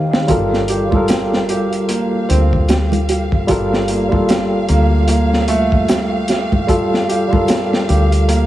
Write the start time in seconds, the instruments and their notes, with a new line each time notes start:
Already playing: tine electric piano D#3 D#4 G4 F5, felt piano A#3
0.13 snare
0.27 fingered electric bass G1, tine electric piano G3 F4 A4 A#4, felt piano G3, violin section F5, kick, closed hi-hat
0.53 snare
0.68 felt piano G4, closed hi-hat
0.89 tine electric piano G3 F4, kick, low conga
0.94 tine electric piano A4 A#4
1.08 felt piano G3, snare, closed hi-hat, shaker
1.33 snare
1.49 felt piano G4, closed hi-hat
1.73 closed hi-hat
1.89 felt piano A#3, closed hi-hat
2.29 fingered electric bass D2, felt piano C4, closed hi-hat
2.53 kick
2.69 felt piano G3, snare, closed hi-hat, shaker
2.92 closed hi-hat, low conga
3.09 felt piano G3, closed hi-hat
3.32 kick
3.47 fingered electric bass G1, tine electric piano G3 F4 A4, felt piano G3, kick, closed hi-hat
3.51 tine electric piano A#4
3.73 snare
3.88 felt piano A#3, closed hi-hat
4.09 tine electric piano G3 F4, kick, low conga
4.14 tine electric piano A4
4.29 felt piano G3, snare, closed hi-hat, shaker
4.69 fingered electric bass D2, felt piano A#3, closed hi-hat
5.08 felt piano A#3, closed hi-hat
5.33 snare
5.48 felt piano A3, closed hi-hat
5.72 kick
5.88 felt piano G3, snare, closed hi-hat, shaker
6.28 felt piano G3, snare, closed hi-hat
6.52 kick, low conga
6.67 tine electric piano G3 F4 A4, felt piano G3, kick, closed hi-hat
6.94 snare
7.09 felt piano G4, closed hi-hat
7.28 tine electric piano G3 F4
7.33 tine electric piano A4 A#4, kick, low conga
7.48 felt piano G3, snare, closed hi-hat, shaker
7.73 snare
7.88 fingered electric bass D2, felt piano G4, closed hi-hat
8.12 closed hi-hat
8.28 felt piano A#3, closed hi-hat